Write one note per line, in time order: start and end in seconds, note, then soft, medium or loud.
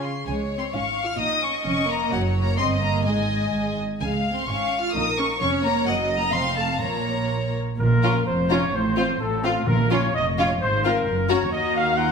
0.03 0.27 C6 soft
0.27 0.64 C#2 soft
0.27 0.64 C#3 soft
0.27 0.56 G#3 soft
0.27 0.70 C#5 soft
0.27 0.35 G#5 soft
0.58 0.64 C4 soft
0.58 0.65 C6 soft
0.73 1.10 G#1 soft
0.73 1.10 G#2 soft
0.73 0.82 C#4 soft
0.73 1.19 F5 soft
0.73 1.04 C#6 soft
1.04 1.10 F4 soft
1.04 1.20 F6 medium
1.19 1.56 A#1 medium
1.19 1.55 A#2 medium
1.19 1.42 D#4 medium
1.19 2.09 D#5 soft
1.19 1.42 D#6 medium
1.42 1.50 C#4 soft
1.42 1.64 C#6 medium
1.65 2.01 F1 medium
1.65 2.01 F2 medium
1.65 1.87 C#4 medium
1.65 1.87 C#6 medium
1.88 2.11 A#3 medium
1.88 2.11 A#5 medium
2.10 2.55 F#1 medium
2.10 2.55 F#2 medium
2.10 2.42 F#3 medium
2.10 2.57 C#5 medium
2.10 2.19 F#5 medium
2.42 2.57 A#3 medium
2.42 2.58 A#5 medium
2.57 3.05 G1 medium
2.57 3.05 G2 medium
2.57 2.81 C4 medium
2.57 3.04 D#5 medium
2.57 2.66 C6 medium
2.81 3.04 A#3 medium
2.81 3.05 A#5 medium
3.04 3.52 G#1 medium
3.04 3.52 G#2 soft
3.04 3.77 G#3 soft
3.04 3.76 D#5 soft
3.04 3.76 G#5 medium
3.53 3.80 G#1 soft
3.53 3.80 G#2 soft
4.00 4.39 C#2 medium
4.00 4.39 C#3 medium
4.00 4.30 G#3 soft
4.00 4.46 F5 soft
4.00 4.09 G#5 medium
4.32 4.48 C4 soft
4.32 4.49 C6 medium
4.48 4.86 G#1 soft
4.48 4.85 G#2 medium
4.48 4.79 C#4 soft
4.48 4.94 F5 medium
4.48 4.81 C#6 medium
4.80 4.95 F4 medium
4.80 4.95 F6 medium
4.95 5.32 A#1 medium
4.95 5.31 A#2 medium
4.95 5.03 D#4 medium
4.95 5.40 A#4 soft
4.95 5.18 D#6 medium
5.18 5.26 C#4 medium
5.18 5.40 C#6 medium
5.40 5.77 F1 medium
5.40 5.77 F2 medium
5.40 5.63 C#4 medium
5.40 5.85 C#5 medium
5.40 5.49 C#6 medium
5.64 5.87 A#3 medium
5.64 5.86 A#5 medium
5.86 6.30 F#1 medium
5.86 6.29 F#2 medium
5.86 6.17 F#3 medium
5.86 6.33 D#5 medium
5.86 5.95 F#5 medium
6.17 6.33 A#3 medium
6.17 6.32 A#5 medium
6.32 6.81 F1 medium
6.32 6.81 F2 medium
6.32 6.56 C4 medium
6.32 6.81 F5 medium
6.32 6.57 C6 medium
6.57 6.65 A3 medium
6.57 6.81 A5 medium
6.81 7.58 A#1 medium
6.81 7.58 A#2 soft
6.81 7.53 A#3 soft
6.81 7.53 C#5 soft
6.81 7.55 A#5 medium
7.79 8.19 A#1 medium
7.79 8.19 A#2 medium
7.79 8.47 A#2 medium
7.79 8.23 A#4 medium
8.03 8.14 C#4 medium
8.03 8.14 F4 medium
8.03 8.14 A#5 soft
8.27 8.67 F1 medium
8.27 8.66 F2 medium
8.27 8.51 C5 medium
8.50 8.62 C#4 medium
8.50 8.62 F4 medium
8.50 8.74 C#5 medium
8.50 8.61 A#5 medium
8.74 9.13 A1 medium
8.74 9.13 A2 medium
8.74 9.21 C5 medium
8.98 9.09 C4 soft
8.98 9.08 F4 medium
8.98 9.08 F5 soft
9.20 9.60 A1 medium
9.20 9.60 A2 medium
9.20 9.43 A4 medium
9.44 9.55 C4 medium
9.44 9.67 F4 medium
9.44 9.55 F4 medium
9.44 9.55 F5 medium
9.67 10.07 A#1 medium
9.67 10.34 A#2 medium
9.67 10.07 A#2 medium
9.67 9.91 A#4 medium
9.91 10.02 C#4 soft
9.91 10.02 F4 medium
9.91 10.14 C#5 medium
9.91 10.02 F5 medium
10.14 10.54 F1 medium
10.14 10.54 F2 medium
10.14 10.25 D#5 medium
10.38 10.49 C#4 medium
10.38 10.49 F4 medium
10.38 10.48 C#5 medium
10.38 10.49 F5 medium
10.61 11.00 G#1 medium
10.61 11.00 G#2 medium
10.61 10.84 C5 medium
10.84 10.95 C4 medium
10.84 10.95 F4 medium
10.84 11.29 A#4 medium
10.84 10.95 F5 medium
11.07 11.45 F#1 medium
11.07 11.45 F#2 medium
11.29 11.41 C#4 medium
11.29 11.40 F#4 medium
11.29 11.52 C#5 medium
11.29 11.41 A#5 medium
11.52 12.12 D#2 medium
11.52 12.12 A#3 medium
11.52 11.95 F#4 medium
11.52 11.74 D#5 medium
11.52 12.12 A#5 medium
11.75 11.97 F5 medium
11.97 12.12 F4 medium
11.97 12.12 F#5 medium